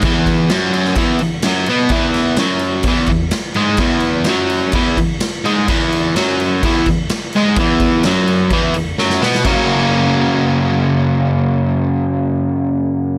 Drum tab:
CC |x-x-x-x-x-x-x-x-|x-x-x-x-x-x-x-x-|x-x-x-x-x-x-x-x-|x-x-x-x-x-x-x-x-|
SD |----o--o----o---|--o-o-------o---|----o-------o---|----o-------o---|
BD |o-o-----o-------|o-------o-o-----|o-------o-o-----|o-------o-o-----|

CC |x-x-x-x-x-x-----|x---------------|----------------|
SD |----o-------oooo|----------------|----------------|
BD |o-o-----o-------|o---------------|----------------|